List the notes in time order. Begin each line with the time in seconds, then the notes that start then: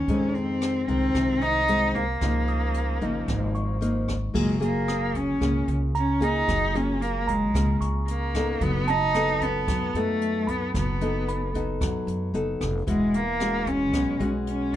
Already playing: C#4
0.08 F2 D#3 G#3 C4, kick, closed hi-hat
0.35 C4, closed hi-hat
0.62 cross-stick, closed hi-hat
0.88 C2 D#3 G#3 C4, kick, closed hi-hat
1.15 C2 C3, kick, cross-stick, closed hi-hat
1.41 D#4, closed hi-hat
1.68 D#3 G#3 C4, closed hi-hat
1.95 A#3, kick, closed hi-hat
2.21 C#2 C#3 F3 A#3 D#4, kick, cross-stick, closed hi-hat
2.48 D#6, closed hi-hat
2.74 closed hi-hat
3.01 G#1 F3 A#3 D#4, kick, closed hi-hat
3.28 G#1 G#2, kick, cross-stick, closed hi-hat
3.55 C#6, closed hi-hat
3.81 F3 A#3 D#4, closed hi-hat
4.08 kick, cross-stick, closed hi-hat
4.34 F#1 F#3 G#3 A#3 F4 G#4, kick, crash
4.60 A#3 F4 G#4, closed hi-hat
4.88 D#6, cross-stick, closed hi-hat
5.15 C#4, kick, closed hi-hat
5.40 C#2 C#3 A#3 F4 G#4, kick, cross-stick, closed hi-hat
5.68 C#2, closed hi-hat
5.95 C#4 A#5, closed hi-hat
6.20 A#3 D#4 F4 G#4, kick, closed hi-hat
6.47 F#1 F#3, kick, cross-stick, closed hi-hat
6.75 A#3 C#4 F4 G#4, closed hi-hat
7.02 A#3, closed hi-hat
7.28 G#3 A#5, kick, closed hi-hat
7.54 C#2 C#3 A#3 F4 G#4, kick, cross-stick, closed hi-hat
7.81 C#2 C#6, closed hi-hat
8.08 A#3, closed hi-hat
8.34 B3 D#4 A4, kick, cross-stick, closed hi-hat
8.61 F#1 F#3 B3, kick, closed hi-hat
8.87 D#4 A5, closed hi-hat
9.14 B3 D#4 A4, cross-stick, closed hi-hat
9.41 B3, kick, closed hi-hat
9.68 F#2 F#3, kick, cross-stick, closed hi-hat
9.94 F#2 A3 B3 D#4 A4, closed hi-hat
10.21 closed hi-hat
10.47 B3 B5, kick, closed hi-hat
10.74 F#1 F#3 B3, kick, cross-stick, closed hi-hat
11.01 B3 D#4 A4, closed hi-hat
11.28 B5, closed hi-hat
11.55 B3 D#4 A4, kick, closed hi-hat
11.80 F#2 F#3, kick, cross-stick, closed hi-hat
12.07 F#2, closed hi-hat
12.34 F#1 B3 D#4 A4, closed hi-hat
12.61 F1, kick, cross-stick, closed hi-hat
12.87 E1 E3 G#3 C#4 F#4, kick, closed hi-hat
13.14 A#3, closed hi-hat
13.40 G#3 C#4 F#4, cross-stick, closed hi-hat
13.67 C#4, kick, closed hi-hat
13.93 B1 B2, kick, cross-stick, closed hi-hat
14.20 B1 G#3 C#4 F#4, closed hi-hat
14.47 C#4, closed hi-hat